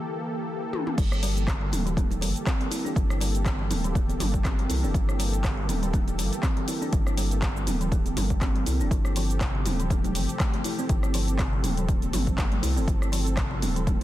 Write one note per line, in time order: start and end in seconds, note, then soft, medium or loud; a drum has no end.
0.00 0.94 E3 medium
0.00 0.94 A#3 medium
0.00 0.94 G4 medium
0.00 0.94 A4 medium
0.73 high tom medium
0.87 mid tom medium
0.98 1.74 G1 loud
0.98 8.88 E3 medium
0.98 1.11 G3 medium
0.98 8.88 A#3 medium
0.98 8.88 G4 medium
0.98 8.87 A4 medium
0.98 kick loud
0.98 closed hi-hat medium
0.98 crash loud
0.98 cabasa medium
1.12 cross-stick medium
1.12 muted conga medium
1.12 cabasa soft
1.23 1.30 G3 loud
1.23 open hi-hat medium
1.23 cabasa medium
1.37 closed hi-hat soft
1.37 muted conga soft
1.37 cabasa soft
1.47 1.61 D3 loud
1.47 kick loud
1.47 cross-stick loud
1.47 clap loud
1.47 closed hi-hat medium
1.47 high conga medium
1.47 cabasa medium
1.61 1.71 G3 medium
1.72 2.24 D1 medium
1.72 open hi-hat medium
1.72 mid tom medium
1.72 muted conga medium
1.72 high conga loud
1.72 low conga medium
1.72 cabasa medium
1.86 1.92 E3 medium
1.86 closed hi-hat soft
1.86 cabasa soft
1.96 2.10 A#3 medium
1.96 kick loud
1.96 closed hi-hat medium
1.96 mid tom medium
1.96 muted conga soft
1.96 high conga medium
1.96 low conga medium
1.96 cabasa medium
2.11 closed hi-hat soft
2.11 low conga loud
2.11 cabasa soft
2.21 2.34 G1 medium
2.21 2.35 G3 medium
2.21 open hi-hat medium
2.21 muted conga medium
2.21 high conga medium
2.21 cabasa medium
2.36 closed hi-hat soft
2.36 cabasa soft
2.46 2.60 C4 loud
2.46 kick loud
2.46 cross-stick loud
2.46 clap loud
2.46 closed hi-hat medium
2.46 cabasa medium
2.60 2.70 G3 medium
2.60 closed hi-hat soft
2.60 muted conga soft
2.60 high conga medium
2.71 2.79 E4 medium
2.71 open hi-hat medium
2.71 cabasa medium
2.85 2.95 D4 medium
2.85 muted conga soft
2.85 cabasa soft
2.96 3.72 G1 loud
2.96 3.09 G3 medium
2.96 kick loud
2.96 closed hi-hat medium
2.96 cabasa medium
3.10 cross-stick medium
3.10 muted conga medium
3.10 cabasa soft
3.21 3.28 G3 loud
3.21 open hi-hat medium
3.21 cabasa loud
3.35 closed hi-hat soft
3.35 muted conga soft
3.35 cabasa soft
3.45 3.59 D3 loud
3.45 kick loud
3.45 cross-stick loud
3.45 clap loud
3.45 closed hi-hat medium
3.45 high conga loud
3.45 cabasa medium
3.59 3.69 G3 medium
3.70 4.17 D1 medium
3.70 open hi-hat medium
3.70 mid tom medium
3.70 muted conga medium
3.70 high conga loud
3.70 low conga medium
3.70 cabasa loud
3.84 3.90 E3 medium
3.84 closed hi-hat soft
3.84 cabasa soft
3.95 4.08 A#3 medium
3.95 kick loud
3.95 closed hi-hat medium
3.95 cabasa medium
4.09 closed hi-hat soft
4.09 high conga loud
4.09 cabasa soft
4.20 4.44 G1 loud
4.20 4.33 G3 medium
4.20 open hi-hat medium
4.20 mid tom medium
4.20 muted conga medium
4.20 high conga medium
4.20 low conga loud
4.20 cabasa medium
4.34 kick medium
4.34 closed hi-hat soft
4.34 cabasa soft
4.45 4.66 G1 medium
4.45 4.58 C4 loud
4.45 kick loud
4.45 cross-stick loud
4.45 clap loud
4.45 closed hi-hat medium
4.45 mid tom medium
4.45 cabasa medium
4.58 4.69 G3 medium
4.58 closed hi-hat soft
4.58 muted conga soft
4.58 high conga medium
4.69 4.85 C2 medium
4.69 4.77 E4 medium
4.69 open hi-hat medium
4.69 high conga loud
4.69 cabasa loud
4.83 4.93 E1 medium
4.83 4.93 D4 medium
4.83 muted conga medium
4.83 cabasa soft
4.94 5.70 G1 loud
4.94 5.07 G3 medium
4.94 kick loud
4.94 closed hi-hat medium
4.94 cabasa medium
5.09 cross-stick medium
5.09 muted conga soft
5.09 cabasa soft
5.19 5.27 G3 loud
5.19 open hi-hat medium
5.19 cabasa loud
5.33 closed hi-hat soft
5.33 muted conga soft
5.33 cabasa soft
5.44 5.57 D3 loud
5.44 kick loud
5.44 cross-stick loud
5.44 clap loud
5.44 closed hi-hat medium
5.44 high conga loud
5.44 cabasa medium
5.57 5.68 G3 medium
5.69 6.20 D1 medium
5.69 open hi-hat medium
5.69 mid tom medium
5.69 muted conga medium
5.69 high conga loud
5.69 low conga medium
5.69 cabasa loud
5.82 5.89 E3 medium
5.82 closed hi-hat soft
5.82 cabasa soft
5.93 6.07 A#3 medium
5.93 kick loud
5.93 closed hi-hat medium
5.93 mid tom medium
5.93 muted conga soft
5.93 high conga medium
5.93 low conga medium
5.93 cabasa medium
6.08 closed hi-hat soft
6.08 low conga loud
6.08 cabasa soft
6.18 6.30 G1 medium
6.18 6.32 G3 medium
6.18 open hi-hat medium
6.18 muted conga soft
6.18 high conga medium
6.18 cabasa loud
6.33 closed hi-hat soft
6.33 cabasa soft
6.43 6.56 C4 loud
6.43 kick loud
6.43 cross-stick loud
6.43 clap loud
6.43 closed hi-hat medium
6.43 cabasa medium
6.57 6.67 G3 medium
6.57 closed hi-hat soft
6.57 muted conga soft
6.57 high conga medium
6.68 6.75 E4 medium
6.68 open hi-hat medium
6.68 cabasa loud
6.81 6.92 D4 medium
6.81 muted conga medium
6.81 cabasa soft
6.93 7.69 G1 loud
6.93 7.06 G3 medium
6.93 kick loud
6.93 closed hi-hat medium
6.93 cabasa medium
7.07 cross-stick medium
7.07 muted conga medium
7.07 cabasa soft
7.17 7.25 G3 loud
7.17 open hi-hat medium
7.17 cabasa medium
7.31 closed hi-hat soft
7.31 muted conga soft
7.31 cabasa soft
7.42 7.55 D3 loud
7.42 kick loud
7.42 cross-stick loud
7.42 clap loud
7.42 closed hi-hat medium
7.42 high conga loud
7.42 cabasa medium
7.56 7.66 G3 medium
7.56 cabasa soft
7.66 8.14 D1 medium
7.66 open hi-hat medium
7.66 mid tom medium
7.66 muted conga soft
7.66 high conga loud
7.66 low conga medium
7.66 cabasa loud
7.81 7.87 E3 medium
7.81 closed hi-hat soft
7.81 cabasa soft
7.92 8.05 A#3 medium
7.92 kick loud
7.92 closed hi-hat medium
7.92 cabasa medium
8.05 closed hi-hat soft
8.05 high conga loud
8.05 cabasa soft
8.17 8.41 G1 loud
8.17 8.30 G3 medium
8.17 open hi-hat medium
8.17 mid tom medium
8.17 muted conga medium
8.17 high conga medium
8.17 low conga loud
8.17 cabasa medium
8.30 kick medium
8.30 closed hi-hat soft
8.30 cabasa soft
8.41 8.63 G1 medium
8.41 8.55 C4 loud
8.41 kick loud
8.41 cross-stick loud
8.41 clap loud
8.41 closed hi-hat medium
8.41 mid tom medium
8.41 cabasa medium
8.55 8.65 G3 medium
8.55 closed hi-hat soft
8.55 muted conga soft
8.55 high conga medium
8.66 8.81 C2 medium
8.66 8.74 E4 medium
8.66 open hi-hat medium
8.66 high conga loud
8.66 cabasa loud
8.80 8.89 E1 medium
8.80 8.90 D4 medium
8.80 muted conga medium
8.80 cabasa soft
8.91 9.68 G1 loud
8.91 9.04 F3 medium
8.91 14.03 C4 medium
8.91 12.84 G4 medium
8.91 14.03 A4 medium
8.91 kick loud
8.91 closed hi-hat medium
8.91 cabasa medium
9.05 cross-stick medium
9.05 muted conga soft
9.05 cabasa soft
9.16 9.24 F3 loud
9.16 open hi-hat medium
9.16 cabasa medium
9.30 closed hi-hat soft
9.30 muted conga soft
9.30 cabasa soft
9.41 9.54 C3 loud
9.41 kick loud
9.41 cross-stick loud
9.41 clap loud
9.41 closed hi-hat medium
9.41 high conga loud
9.41 cabasa medium
9.55 9.65 F3 medium
9.66 10.17 D1 medium
9.66 open hi-hat medium
9.66 mid tom medium
9.66 muted conga soft
9.66 high conga medium
9.66 low conga medium
9.66 cabasa loud
9.79 9.85 E3 medium
9.79 closed hi-hat soft
9.79 cabasa soft
9.90 10.04 A3 medium
9.90 kick loud
9.90 closed hi-hat medium
9.90 mid tom medium
9.90 muted conga soft
9.90 high conga medium
9.90 low conga medium
9.90 cabasa medium
10.04 closed hi-hat soft
10.04 low conga loud
10.04 cabasa soft
10.15 10.27 G1 medium
10.15 10.29 F3 medium
10.15 open hi-hat medium
10.15 muted conga medium
10.15 high conga medium
10.15 cabasa medium
10.29 closed hi-hat soft
10.29 cabasa soft
10.40 10.53 A3 loud
10.40 kick loud
10.40 cross-stick loud
10.40 clap loud
10.40 closed hi-hat medium
10.40 cabasa medium
10.54 10.64 F3 medium
10.54 closed hi-hat soft
10.54 muted conga soft
10.54 high conga medium
10.64 10.72 E4 medium
10.64 open hi-hat medium
10.64 cabasa medium
10.79 10.89 C4 medium
10.79 muted conga soft
10.79 cabasa soft
10.89 11.65 G1 loud
10.89 11.03 F3 medium
10.89 kick loud
10.89 closed hi-hat medium
10.89 cabasa medium
11.03 cross-stick medium
11.03 muted conga medium
11.03 cabasa soft
11.14 11.22 F3 loud
11.14 open hi-hat medium
11.14 cabasa medium
11.28 closed hi-hat soft
11.28 muted conga soft
11.28 cabasa soft
11.39 11.52 C3 loud
11.39 kick loud
11.39 cross-stick loud
11.39 clap loud
11.39 closed hi-hat medium
11.39 high conga medium
11.39 cabasa medium
11.53 11.63 F3 medium
11.64 12.11 D1 medium
11.64 open hi-hat medium
11.64 mid tom medium
11.64 muted conga medium
11.64 high conga medium
11.64 low conga medium
11.64 cabasa medium
11.77 11.84 E3 medium
11.77 closed hi-hat soft
11.77 cabasa soft
11.89 12.02 A3 medium
11.89 kick loud
11.89 closed hi-hat medium
11.89 muted conga soft
11.89 cabasa medium
12.02 closed hi-hat soft
12.02 high conga loud
12.02 cabasa soft
12.13 12.38 G1 loud
12.13 12.27 F3 medium
12.13 open hi-hat medium
12.13 mid tom medium
12.13 muted conga medium
12.13 high conga medium
12.13 low conga medium
12.13 cabasa medium
12.27 kick medium
12.27 closed hi-hat soft
12.27 cabasa soft
12.38 12.60 G1 medium
12.38 12.51 A3 loud
12.38 kick loud
12.38 cross-stick loud
12.38 clap loud
12.38 closed hi-hat medium
12.38 mid tom medium
12.38 cabasa medium
12.52 12.62 F3 medium
12.52 closed hi-hat soft
12.52 muted conga soft
12.52 high conga medium
12.62 12.78 C2 medium
12.62 12.70 E4 medium
12.62 open hi-hat medium
12.62 high conga loud
12.62 cabasa medium
12.76 12.86 F1 medium
12.76 12.87 C4 medium
12.76 muted conga soft
12.76 cabasa soft
12.87 13.64 G1 loud
12.87 13.01 F3 medium
12.87 kick loud
12.87 closed hi-hat medium
12.87 cabasa medium
13.02 cross-stick medium
13.02 muted conga medium
13.02 cabasa soft
13.12 13.20 F3 loud
13.12 open hi-hat medium
13.12 cabasa medium
13.27 closed hi-hat soft
13.27 muted conga soft
13.27 cabasa soft
13.37 13.50 C3 loud
13.37 kick loud
13.37 cross-stick loud
13.37 clap loud
13.37 closed hi-hat medium
13.37 high conga medium
13.37 cabasa medium
13.51 13.61 F3 medium
13.62 14.03 D1 medium
13.62 open hi-hat medium
13.62 mid tom medium
13.62 muted conga soft
13.62 high conga loud
13.62 low conga medium
13.62 cabasa medium
13.76 13.82 E3 medium
13.76 closed hi-hat soft
13.76 cabasa soft
13.87 14.00 A3 medium
13.87 kick loud
13.87 closed hi-hat medium
13.87 mid tom medium
13.87 muted conga soft
13.87 high conga medium
13.87 low conga medium
13.87 cabasa medium